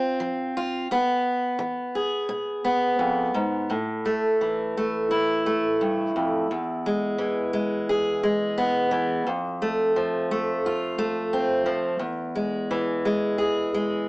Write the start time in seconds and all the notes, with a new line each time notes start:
Already playing: C3 C4 F4
0.20 F3
0.57 F4
0.91 E2 B3
1.59 E3
1.95 G#4
2.29 B2
2.64 B3
2.99 F2
3.34 G#2
3.70 A2
4.05 A3
4.41 E3
4.77 A3
5.11 E4
5.46 A3
5.81 G2
6.16 F2
6.51 E2
6.86 G#3
7.18 E3
7.53 G#3
7.89 G#4
8.23 G#3
8.58 B3
8.91 E3
9.27 F2
9.62 A3
9.96 F3
10.31 A3
10.66 F4
10.98 A3
11.33 C4
11.66 F3
11.99 E2
12.35 G#3
12.71 E3
13.05 G#3
13.38 G#4
13.74 G#3